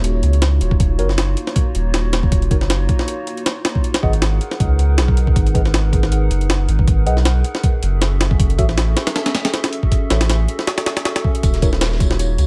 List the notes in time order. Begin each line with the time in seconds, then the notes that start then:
Already playing: D#1 A#3 D#4 F4 F#4 C#5
0.04 closed hi-hat
0.23 C#2, closed hi-hat
0.33 closed hi-hat
0.42 snare, closed hi-hat
0.61 D#1, closed hi-hat
0.71 kick
0.80 kick, closed hi-hat
0.99 F#1 D#4 F#4 A#4 C#5, closed hi-hat
1.09 snare
1.18 snare, closed hi-hat
1.37 closed hi-hat
1.47 snare
1.56 kick, closed hi-hat
1.75 D#1, closed hi-hat
1.94 snare, closed hi-hat
2.13 snare, closed hi-hat
2.23 kick
2.31 A#3 D#4 F4 F#4 C#5, kick, closed hi-hat
2.42 closed hi-hat
2.51 F#1 D#4 F#4 A#4 C#5, kick, closed hi-hat
2.61 snare
2.70 snare, closed hi-hat
2.89 kick, closed hi-hat
2.99 snare
3.08 closed hi-hat
3.27 closed hi-hat
3.37 closed hi-hat
3.46 snare, closed hi-hat
3.65 snare, closed hi-hat
3.75 kick
3.84 closed hi-hat
3.94 snare, closed hi-hat
4.03 G#1 G#4 B4 D#5 F#5, kick
4.13 closed hi-hat
4.22 snare, closed hi-hat
4.41 closed hi-hat
4.51 snare
4.60 C#2, kick, closed hi-hat
4.79 closed hi-hat
4.98 B1, snare, closed hi-hat
5.08 kick
5.17 closed hi-hat
5.27 kick
5.36 G#1 D#4 G#4 A#4 B4 F#5, kick, closed hi-hat
5.47 closed hi-hat
5.55 G#4 B4 D#5 F#5, kick, closed hi-hat
5.65 snare
5.74 snare, closed hi-hat
5.93 kick, closed hi-hat
6.03 snare
6.12 closed hi-hat
6.30 F#1, closed hi-hat
6.41 closed hi-hat
6.50 snare, closed hi-hat
6.68 G#1, closed hi-hat
6.79 kick
6.87 G#4, kick, closed hi-hat
7.06 B1 G#4 B4 D#5 F#5, closed hi-hat
7.17 snare
7.25 snare, closed hi-hat
7.44 closed hi-hat
7.55 snare
7.64 kick, closed hi-hat
7.82 F#1, closed hi-hat
8.02 snare, closed hi-hat
8.21 snare, closed hi-hat
8.31 kick
8.39 C#4 F#4 G#4 A4 E5, kick, closed hi-hat
8.50 closed hi-hat
8.58 A1 F#4 A4 C#5 E5, kick, closed hi-hat
8.69 snare
8.78 snare, closed hi-hat
8.97 snare, closed hi-hat
9.07 snare, closed hi-hat
9.16 snare, closed hi-hat
9.26 snare, closed hi-hat
9.35 snare, closed hi-hat
9.45 snare, closed hi-hat
9.54 snare, closed hi-hat
9.64 snare, closed hi-hat
9.73 closed hi-hat
9.83 kick
9.92 kick, closed hi-hat
10.10 A1 F#4 A4 C#5 E5, snare, closed hi-hat
10.21 snare, closed hi-hat
10.30 snare, closed hi-hat
10.48 closed hi-hat
10.59 snare
10.67 snare, closed hi-hat
10.78 snare, closed hi-hat
10.86 snare, closed hi-hat
10.97 snare, closed hi-hat
11.05 snare, closed hi-hat
11.16 snare, closed hi-hat
11.24 kick
11.35 closed hi-hat
11.43 D#1 A#3 D#4 F4 F#4 C#5, kick, closed hi-hat, tambourine
11.53 snare, closed hi-hat
11.62 D#4 F#4 A#4 C#5, kick, closed hi-hat, tambourine
11.73 snare
11.81 snare, closed hi-hat, tambourine
11.92 snare
12.00 kick, closed hi-hat, tambourine
12.11 snare
12.19 closed hi-hat, tambourine
12.38 C#2, closed hi-hat, tambourine